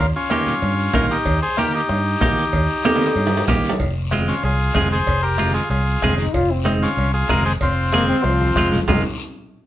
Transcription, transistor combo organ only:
0.16 1.07 C#4 medium
0.16 1.13 F4 medium
1.10 1.40 D#4 medium
1.10 1.40 G4 loud
1.42 1.57 G#4 medium
1.42 1.58 C5 loud
1.58 1.73 G4 medium
1.58 1.73 A#4 loud
1.75 3.45 D#4 medium
1.75 3.45 G4 medium
4.28 4.43 C#4 medium
4.28 4.44 F4 medium
4.44 4.89 F4 medium
4.44 4.88 G#4 medium
4.92 5.22 G#4 medium
4.92 5.24 C5 loud
5.23 5.53 G4 medium
5.23 5.52 A#4 loud
5.54 5.69 F4 medium
5.54 5.69 G#4 medium
5.70 6.15 F4 medium
5.70 6.15 G#4 medium
6.83 7.12 C#4 medium
6.83 7.12 F4 medium
7.14 7.29 F4 medium
7.14 7.30 G#4 medium
7.29 7.44 F4 medium
7.29 7.44 A#4 loud
7.45 7.53 G#4 medium
7.45 7.52 C5 loud
7.62 8.69 C4 medium
7.62 8.69 F4 medium
8.88 9.03 F4 medium

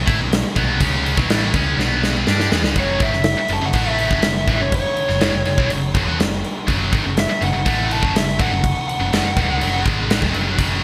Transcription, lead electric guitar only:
2.80 3.02 C#5 loud
3.03 3.49 E5 medium
3.53 3.63 A5 medium
3.66 3.88 F#5 medium
3.88 4.59 E5 medium
4.61 4.73 C#5 medium
4.75 5.69 C#5 medium
7.20 7.42 E5 medium
7.44 7.90 F#5 medium
7.92 8.15 A5 medium
8.16 8.39 E5 medium
8.41 8.87 F#5 medium
8.88 9.83 F#5 medium

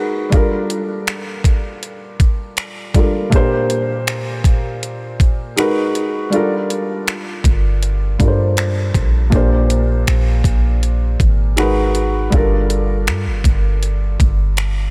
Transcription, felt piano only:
0.00 0.32 G#3 medium
0.00 0.32 D#4 medium
0.00 0.33 F#4 medium
0.00 0.33 A#4 medium
0.00 0.33 B4 medium
0.30 2.90 G3 medium
0.30 2.90 D4 medium
0.30 2.91 F4 medium
0.34 2.92 A4 medium
0.34 2.92 A#4 medium
2.94 3.32 G3 medium
2.94 3.31 D4 soft
2.94 3.33 F4 soft
2.94 3.33 A4 medium
2.94 3.33 A#4 medium
3.30 5.52 A#2 medium
3.30 5.53 A#3 medium
3.30 5.54 D4 medium
3.34 5.54 G4 medium
3.34 5.55 C5 medium
5.56 6.32 G#3 medium
5.56 6.32 D#4 medium
5.56 6.33 F#4 medium
5.56 6.33 A#4 medium
5.56 6.33 B4 medium
6.30 8.15 G3 medium
6.30 8.16 D4 medium
6.30 8.16 F4 medium
6.34 8.17 A4 medium
6.34 8.18 A#4 medium
8.18 9.32 G3 medium
8.18 9.31 D4 medium
8.18 9.32 F4 soft
8.18 9.33 A4 soft
8.18 8.27 A#4 soft
8.28 9.34 C5 medium
9.30 11.52 A#2 medium
9.30 11.53 A#3 medium
9.30 11.53 D4 medium
9.34 11.54 G4 medium
9.34 11.55 C5 medium
11.56 12.32 G#3 medium
11.56 12.32 D#4 medium
11.56 12.33 F#4 medium
11.56 12.33 A#4 medium
11.56 12.33 B4 medium
12.30 14.90 G3 medium
12.30 14.90 D4 medium
12.30 14.90 F4 medium
12.34 14.90 A4 medium
12.34 14.90 A#4 medium

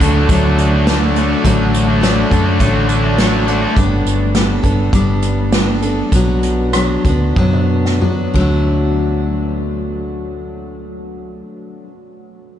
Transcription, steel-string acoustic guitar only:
0.00 0.29 D3 medium
0.00 0.30 A3 soft
0.00 0.30 D4 soft
0.00 0.29 A4 medium
0.29 0.87 D3 medium
0.29 0.86 F#3 medium
0.29 0.88 A3 medium
0.29 0.89 D4 medium
0.29 0.89 A4 medium
0.87 1.44 F#3 medium
0.87 1.46 A3 medium
0.87 1.46 D4 medium
0.87 1.46 A4 medium
1.44 2.02 D3 medium
1.44 2.00 F#3 medium
1.44 2.02 A3 medium
1.44 2.04 D4 medium
1.44 2.04 A4 medium
2.01 2.31 F#3 medium
2.01 2.31 A3 medium
2.01 2.32 D4 medium
2.01 2.30 A4 medium
2.31 2.59 A3 soft
2.31 2.60 D4 soft
2.31 2.60 A4 soft
2.59 3.17 D3 medium
2.59 3.18 F#3 medium
2.59 3.18 A3 medium
2.59 3.20 D4 medium
2.59 3.18 A4 medium
3.19 3.47 F#3 medium
3.19 3.48 A3 medium
3.19 3.48 D4 medium
3.19 3.47 A4 medium
3.48 3.78 A3 soft
3.48 3.77 D4 soft
3.48 3.76 A4 soft
3.77 4.34 G3 medium
3.77 4.35 B3 medium
3.77 4.37 D4 medium
3.77 4.36 A4 medium
4.35 4.64 G3 medium
4.35 4.64 B3 medium
4.35 4.63 D4 medium
4.35 4.62 A4 medium
4.63 4.94 B3 soft
4.63 4.93 D4 soft
4.63 4.92 A4 medium
4.94 5.51 G3 medium
4.94 5.52 B3 medium
4.94 5.54 D4 medium
4.94 5.53 A4 medium
5.52 5.82 G3 medium
5.52 5.83 B3 medium
5.52 5.83 D4 medium
5.52 5.81 A4 medium
5.82 6.14 B3 soft
5.82 6.13 D4 soft
5.82 6.12 A4 soft
6.14 6.74 B2 medium
6.14 6.73 F#3 medium
6.14 6.74 B3 medium
6.14 6.75 D4 medium
6.14 6.75 F#4 medium
6.75 7.05 F#3 medium
6.75 7.06 B3 medium
6.75 7.06 D4 medium
6.75 7.05 F#4 medium
7.06 7.37 B3 soft
7.06 7.38 D4 soft
7.06 7.37 F#4 medium
7.37 8.02 B2 medium
7.37 7.99 F#3 medium
7.37 8.00 B3 medium
7.37 8.02 D4 medium
7.37 8.03 F#4 medium
8.01 8.34 F#3 soft
8.01 8.35 B3 medium
8.01 8.36 D4 medium
8.01 8.36 F#4 medium
8.34 11.84 D3 medium
8.34 11.86 F#3 medium
8.34 11.88 A3 medium
8.40 11.90 D4 medium
8.40 11.91 F#4 medium

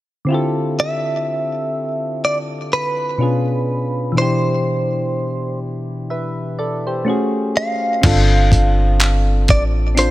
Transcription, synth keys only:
0.25 3.13 D3 medium
0.25 3.14 C4 medium
0.25 3.15 E4 medium
0.31 3.16 F4 medium
0.31 3.17 G4 medium
0.31 3.18 A4 medium
3.18 4.13 B2 medium
3.18 4.16 C#4 medium
3.18 4.16 D4 medium
3.18 4.17 F4 medium
3.22 4.18 G#4 medium
4.12 7.02 B2 medium
4.12 7.00 E3 medium
4.17 7.03 D4 medium
4.17 7.04 E4 medium
4.22 6.09 G4 medium
6.10 6.56 B4 medium
6.10 6.56 E5 medium
6.59 6.85 A4 medium
6.59 6.85 D5 medium
6.87 7.33 G4 soft
6.87 7.33 C5 medium
7.05 8.02 A3 medium
7.05 8.03 C#4 medium
7.05 8.04 F#4 medium
7.09 8.05 G#4 medium
8.02 9.43 C4 medium
8.02 9.44 D4 medium
8.02 9.45 F4 medium
8.06 9.45 A4 medium
9.95 10.11 C4 medium
9.95 10.11 D4 medium
9.95 10.11 F4 medium
10.00 10.11 C5 medium

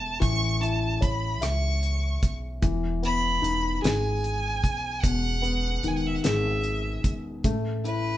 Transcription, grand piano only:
0.00 0.18 A3 medium
0.00 0.60 E4 soft
0.00 0.18 C#5 soft
0.00 0.58 E5 soft
0.20 2.58 E3 medium
0.60 2.18 E4 soft
1.01 2.58 C#5 soft
1.41 2.59 E5 medium
2.62 4.99 E3 medium
3.03 4.59 B3 soft
3.42 4.99 D#4 soft
3.82 5.39 G#4 medium
5.03 7.40 B2 medium
5.42 6.99 B3 medium
5.84 7.41 D#3 soft
6.24 7.41 G#4 medium
7.44 8.17 A3 medium
7.84 8.17 E4 medium

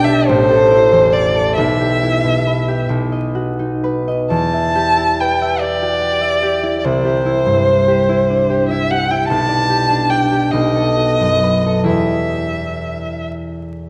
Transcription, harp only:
0.00 0.30 B1 medium
0.00 0.31 D4 medium
0.00 0.31 D5 medium
0.07 0.32 G4 medium
0.29 1.61 A1 medium
0.50 1.34 A4 soft
0.71 2.02 E4 soft
0.92 1.61 E2 soft
1.13 1.61 C5 soft
1.35 1.61 A4 soft
1.58 2.88 B1 medium
1.80 2.67 G4 soft
2.03 2.95 E4 soft
2.24 2.94 B2 soft
2.47 3.82 B4 soft
2.68 2.94 G4 soft
2.89 4.33 B1 soft
3.12 4.07 D#5 soft
3.35 4.33 F#4 soft
3.59 4.33 D#4 soft
3.84 5.19 B4 soft
4.08 4.34 D#5 soft
4.30 6.87 E2 soft
4.54 5.41 E5 soft
4.75 5.61 G4 soft
4.97 6.62 E4 soft
5.20 6.88 B4 soft
5.42 6.20 E5 soft
5.62 6.00 G4 soft
5.82 6.17 F#4 soft
6.01 6.41 G4 soft
6.21 9.32 E5 soft
6.43 7.04 G4 soft
6.63 7.24 E4 soft
6.85 9.33 C2 medium
7.05 7.87 G4 soft
7.26 8.08 E4 soft
7.46 9.32 G2 soft
7.66 9.32 C5 soft
7.88 8.49 G4 soft
8.09 8.70 E4 soft
8.30 8.64 D4 soft
8.50 8.90 G4 soft
8.71 9.09 E4 soft
8.92 9.68 G4 soft
9.11 9.33 E4 soft
9.30 10.52 B1 medium
9.49 10.09 D5 soft
9.70 10.31 G4 soft
9.90 10.56 D4 soft
10.10 10.56 D5 soft
10.32 10.57 G4 soft
10.53 11.92 B1 soft
10.76 11.65 A4 soft
10.97 11.92 F#4 soft
11.20 11.92 F#2 soft
11.43 11.87 B4 soft
11.66 11.92 A4 soft
11.84 13.89 E2 soft
11.84 13.89 E4 soft
11.84 13.89 G4 soft
11.88 13.89 B4 soft

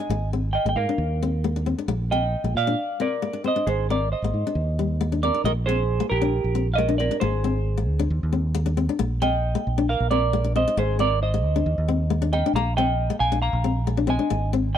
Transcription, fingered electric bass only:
0.09 0.56 G#1 medium
0.65 0.75 G#1 medium
0.76 0.85 G#2 medium
0.98 1.73 D#2 loud
1.88 2.35 A#1 medium
2.44 2.53 A#1 medium
2.55 2.73 A#2 medium
3.67 4.13 G#1 medium
4.22 4.31 G#1 medium
4.34 4.43 G#2 medium
4.55 5.29 D#2 medium
5.44 6.00 A#1 medium
6.11 6.39 A#1 medium
6.44 7.09 A#1 medium
7.22 7.88 G#1 medium
7.88 8.07 D2 medium
8.10 8.20 D#2 loud
8.23 8.87 D#2 loud
9.00 9.55 A#1 medium
9.67 9.94 A#1 medium
10.00 10.64 A#1 medium
10.77 11.44 G#1 medium
11.44 11.62 D2 medium
11.66 11.75 D#2 loud
11.78 12.42 D#2 medium
12.53 13.09 A#1 medium
13.20 13.48 A#1 medium
13.53 14.18 A#1 medium
14.31 14.78 G#1 medium

